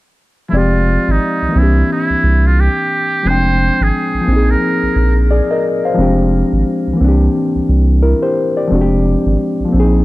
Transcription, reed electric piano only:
0.49 1.53 F3 medium
0.49 1.54 G#3 medium
0.49 1.55 C4 medium
0.54 1.57 G4 medium
0.54 1.56 D5 medium
1.49 3.19 E3 medium
1.49 3.20 A#3 medium
1.56 3.22 C4 medium
1.56 3.24 D4 medium
1.63 3.26 G4 medium
3.23 4.20 F3 medium
3.23 4.27 G#3 medium
3.23 4.27 C4 medium
3.28 4.29 D4 medium
3.28 4.30 G5 medium
4.21 5.91 F3 medium
4.21 5.93 A#3 medium
4.28 5.95 C4 medium
4.33 5.97 D#4 medium
4.33 5.30 G#4 medium
5.31 5.50 G#4 medium
5.31 5.50 D5 medium
5.51 5.83 A#4 medium
5.51 5.83 D#5 medium
5.85 6.17 C5 soft
5.85 6.17 F5 medium
5.94 6.98 F3 medium
5.94 6.99 G#3 medium
5.94 6.99 C4 medium
6.00 7.01 D4 medium
6.00 7.02 G4 medium
6.93 8.64 E3 medium
6.93 8.65 A#3 medium
7.00 8.67 C4 medium
7.00 8.69 D4 medium
7.08 8.04 G4 medium
8.02 8.22 E4 medium
8.02 8.22 A#4 medium
8.23 8.55 G4 medium
8.23 8.55 C5 medium
8.57 8.80 G4 soft
8.57 8.89 D5 medium
8.67 9.64 F3 medium
8.67 9.72 G#3 medium
8.67 9.71 C4 medium
8.73 9.74 D4 medium
8.73 8.81 F#4 medium
8.81 9.78 G4 medium
9.65 10.05 F3 medium
9.65 10.05 A#3 medium
9.72 10.05 C4 medium
9.72 9.82 D4 medium
9.80 10.05 D#4 medium
9.80 10.05 G#4 medium

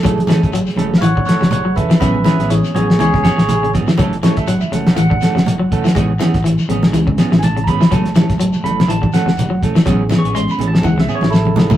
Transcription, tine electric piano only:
0.00 0.76 A3 medium
0.00 0.76 E4 medium
0.00 1.97 G#4 medium
0.00 0.50 A4 loud
0.77 0.99 G#3 medium
0.77 1.00 A3 medium
0.77 1.00 E4 medium
0.98 1.25 C#5 loud
0.98 1.01 F5 medium
1.03 1.26 F#5 loud
1.26 1.50 C#5 loud
1.26 1.51 F#5 loud
1.52 1.75 C#5 medium
1.52 1.76 F#5 loud
1.76 1.99 B4 medium
1.76 1.99 E5 loud
1.99 2.70 G#3 soft
1.99 2.71 B3 medium
1.99 2.71 C#4 medium
1.99 2.23 B4 medium
1.99 2.24 E5 medium
2.25 2.48 B4 medium
2.25 2.50 E5 medium
2.50 2.73 G#4 medium
2.50 2.74 C#5 medium
2.74 2.98 G#4 medium
2.74 2.99 C#5 medium
2.99 3.22 G#3 medium
2.99 3.22 B3 soft
2.99 3.22 C#4 medium
2.99 3.22 G#4 medium
2.99 3.22 C#5 loud
3.23 3.70 G#4 medium
3.23 3.72 C#5 loud
4.22 5.91 G#3 medium
4.22 5.91 A3 soft
4.22 5.91 E4 medium
4.22 4.36 C#5 loud
4.37 4.47 E5 loud
4.47 4.60 F#5 medium
4.61 4.71 E5 medium
4.73 4.97 F#5 loud
4.94 4.97 F5 medium
4.98 6.41 F#5 loud
6.69 7.39 G#3 medium
6.69 7.39 B3 medium
6.69 7.39 C#4 medium
7.39 7.42 G#5 medium
7.44 7.67 A5 loud
7.64 7.67 A#5 medium
7.68 7.91 B5 loud
7.90 9.82 G#3 medium
7.90 9.82 A3 medium
7.90 9.83 E4 medium
7.90 8.63 A5 medium
8.64 8.88 B5 loud
8.89 9.13 A5 loud
9.13 9.61 F#5 loud
9.85 11.77 B3 medium
9.85 11.77 C#4 medium
9.85 11.77 G#4 medium
10.18 10.34 C#6 loud
10.35 10.51 C6 loud
10.51 10.67 B5 medium
10.68 10.83 A5 loud
10.84 11.00 F#5 loud
11.00 11.16 E5 loud
11.15 11.32 C#5 loud
11.30 11.77 E4 loud
11.30 11.77 A4 loud

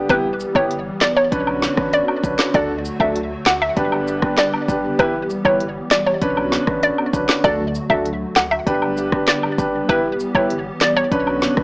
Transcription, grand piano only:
0.09 0.25 B3 medium
0.09 0.25 E4 medium
0.09 0.26 G4 loud
0.55 0.71 B3 medium
0.55 0.71 E4 medium
0.55 0.71 G4 medium
1.32 1.74 C#4 medium
1.32 1.74 D4 medium
1.32 1.74 B4 loud
1.77 2.20 C#4 medium
1.77 2.20 D4 medium
1.77 2.20 B4 medium
2.23 2.52 C#4 medium
2.23 2.52 D4 medium
2.23 2.52 B4 medium
2.54 2.70 D4 medium
2.54 2.70 F#4 medium
2.54 2.70 A4 loud
3.00 3.16 D4 medium
3.00 3.16 F#4 medium
3.00 3.16 A4 medium
3.76 4.19 D4 medium
3.76 4.19 G4 medium
3.76 4.19 B4 loud
4.22 4.65 D4 medium
4.22 4.65 G4 medium
4.22 4.65 B4 medium
4.68 4.97 D4 medium
4.68 4.97 G4 medium
4.68 4.97 B4 medium
4.99 5.15 E4 medium
4.99 5.15 G4 medium
4.99 5.15 B4 loud
5.45 5.61 E4 medium
5.45 5.61 G4 medium
5.45 5.61 B4 medium
6.21 6.64 C#4 medium
6.21 6.64 D4 medium
6.21 6.64 B4 loud
6.67 7.10 C#4 medium
6.67 7.10 D4 medium
6.67 7.10 B4 medium
7.13 7.41 C#4 medium
7.13 7.42 D4 medium
7.13 7.42 B4 medium
7.44 7.60 D4 loud
7.44 7.60 F#4 medium
7.44 7.60 A4 loud
7.90 8.06 D4 medium
7.90 8.06 F#4 medium
7.90 8.06 A4 medium
8.66 9.09 D4 medium
8.66 9.09 G4 medium
8.66 9.09 B4 loud
9.12 9.55 D4 medium
9.12 9.55 G4 medium
9.12 9.55 B4 medium
9.58 9.87 D4 medium
9.58 9.87 G4 medium
9.58 9.87 B4 medium
9.89 10.05 E4 loud
9.89 10.05 G4 medium
9.89 10.05 B4 loud
10.35 10.51 E4 medium
10.35 10.51 G4 medium
10.35 10.51 B4 medium
11.11 11.54 C#4 medium
11.11 11.54 D4 medium
11.11 11.54 B4 loud
11.57 11.63 C#4 medium
11.57 11.63 D4 medium
11.57 11.63 B4 medium

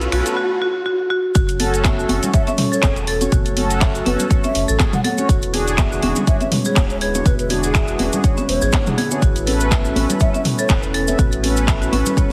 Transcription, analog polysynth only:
0.00 0.10 C#4 loud
0.00 0.10 A4 medium
0.00 0.10 B4 loud
0.12 0.35 C#4 loud
0.12 0.35 A4 medium
0.12 0.35 B4 loud
1.60 1.95 C#4 loud
1.60 1.95 F#4 medium
1.60 1.95 A4 loud
1.98 2.31 C#4 medium
1.98 2.31 F#4 medium
1.98 2.31 A4 medium
2.34 2.47 C#4 medium
2.34 2.47 F#4 medium
2.34 2.47 A4 medium
2.83 2.97 C#4 medium
2.83 2.97 F#4 medium
2.83 2.97 G#4 medium
3.21 3.32 C#4 medium
3.21 3.32 F#4 medium
3.21 3.32 C#5 medium
3.57 3.92 C#4 loud
3.57 3.92 F#4 medium
3.57 3.92 A4 loud
3.95 4.28 C#4 medium
3.95 4.28 F#4 medium
3.95 4.28 A4 medium
4.31 4.44 C#4 medium
4.31 4.44 F#4 medium
4.31 4.44 A4 medium
4.80 4.93 C#4 medium
4.80 4.93 F#4 medium
4.80 4.94 G#4 medium
5.18 5.28 C#4 medium
5.18 5.28 F#4 medium
5.18 5.28 C#5 medium
5.54 5.89 D4 medium
5.54 5.88 F#4 medium
5.54 5.89 G#4 loud
5.92 6.25 D4 medium
5.92 6.25 F#4 medium
5.92 6.25 G#4 medium
6.27 6.41 D4 medium
6.27 6.41 F#4 medium
6.27 6.41 G#4 medium
6.77 6.90 D4 medium
6.77 6.90 F#4 medium
6.77 6.90 G#4 medium
7.14 7.26 D4 medium
7.14 7.26 F#4 medium
7.14 7.26 C#5 medium
7.50 7.85 D4 loud
7.50 7.85 F#4 medium
7.50 7.85 G#4 loud
7.88 8.21 D4 medium
7.88 8.21 F#4 medium
7.88 8.21 G#4 medium
8.24 8.38 D4 medium
8.24 8.38 F#4 medium
8.24 8.38 G#4 medium
8.73 8.85 D4 medium
8.73 8.85 F#4 medium
8.73 8.85 C#5 medium
8.86 8.98 D4 medium
8.86 8.98 F#4 medium
8.86 8.98 G#4 medium
9.11 9.21 D4 medium
9.11 9.21 F#4 medium
9.11 9.21 G#4 medium
9.46 9.82 C#4 medium
9.46 9.82 A4 medium
9.46 9.82 B4 loud
9.84 10.18 C#4 medium
9.84 10.18 A4 medium
9.84 10.18 B4 medium
10.20 10.34 C#4 medium
10.20 10.34 B4 medium
10.70 10.83 C#4 medium
10.70 10.83 A4 medium
10.70 10.83 B4 medium
11.08 11.19 C#4 medium
11.08 11.19 A4 medium
11.08 11.19 E5 medium
11.43 11.78 C#4 medium
11.43 11.78 A4 medium
11.43 11.78 B4 loud
11.81 12.14 C#4 medium
11.81 12.14 A4 medium
11.81 12.14 B4 medium
12.17 12.31 C#4 medium
12.17 12.31 A4 medium
12.17 12.31 B4 medium

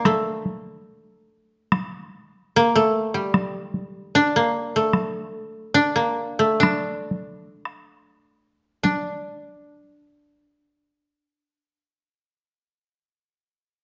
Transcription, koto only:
0.00 0.11 A#3 medium
0.00 1.87 D4 medium
0.05 2.62 A3 medium
2.56 2.81 A#3 loud
2.75 4.42 A3 medium
3.14 4.82 G3 medium
4.15 5.74 D4 loud
4.36 4.82 A#3 medium
4.76 6.02 A3 medium
5.74 6.60 D4 loud
5.96 6.45 A#3 medium
6.39 9.28 A3 medium
6.60 8.83 D4 medium
8.83 11.90 D4 medium

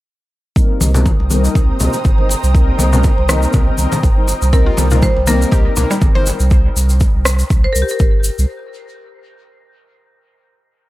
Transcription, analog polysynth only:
0.56 0.91 G3 medium
0.56 0.91 A#3 medium
0.56 0.91 C4 medium
0.56 0.91 D#4 medium
0.56 0.91 A#4 medium
0.94 1.11 G3 medium
0.94 1.11 A#3 medium
0.94 1.11 C4 medium
0.94 1.11 D#4 medium
0.94 1.11 A#4 medium
1.30 1.77 G3 medium
1.30 1.77 A#3 medium
1.30 1.77 C4 medium
1.30 1.77 D#4 medium
1.30 1.77 A#4 loud
1.80 1.98 G3 medium
1.80 1.98 A#3 medium
1.80 1.98 C4 medium
1.80 1.98 D#4 medium
1.80 1.98 A#4 medium
2.18 2.28 G3 medium
2.18 2.28 A#3 medium
2.18 2.28 C4 medium
2.18 2.28 D#4 medium
2.18 2.28 A#4 medium
2.55 2.90 G3 medium
2.55 2.90 A#3 medium
2.55 2.90 C4 medium
2.55 2.90 D#4 medium
2.55 2.90 A#4 medium
2.93 3.09 G3 medium
2.93 3.09 A#3 medium
2.93 3.09 C4 medium
2.93 3.09 D#4 medium
2.93 3.09 A#4 medium
3.29 3.76 G3 medium
3.29 3.76 A#3 medium
3.29 3.76 C4 medium
3.29 3.76 D#4 medium
3.29 3.76 A#4 loud
3.79 3.97 G3 medium
3.79 3.97 A#3 medium
3.79 3.97 C4 medium
3.79 3.97 D#4 medium
3.79 3.97 A#4 medium
4.17 4.27 G3 medium
4.17 4.27 A#3 medium
4.17 4.27 C4 medium
4.17 4.27 D#4 medium
4.17 4.27 A#4 medium
4.53 4.88 G3 medium
4.53 4.88 A#3 medium
4.53 4.88 C4 medium
4.53 4.88 D#4 medium
4.53 4.88 A#4 medium
4.91 5.08 G3 medium
4.91 5.08 A#3 medium
4.91 5.08 C4 medium
4.91 5.08 D#4 medium
4.91 5.08 A#4 medium
5.27 5.74 G3 medium
5.27 5.74 A#3 medium
5.27 5.74 C4 medium
5.27 5.74 D#4 medium
5.27 5.74 A#4 loud
5.77 5.95 G3 medium
5.77 5.95 A#3 medium
5.77 5.95 C4 medium
5.77 5.95 D#4 medium
5.77 5.95 A#4 medium
6.15 6.25 G3 medium
6.15 6.25 A#3 medium
6.15 6.25 C4 medium
6.15 6.25 D#4 medium
6.15 6.25 A#4 medium

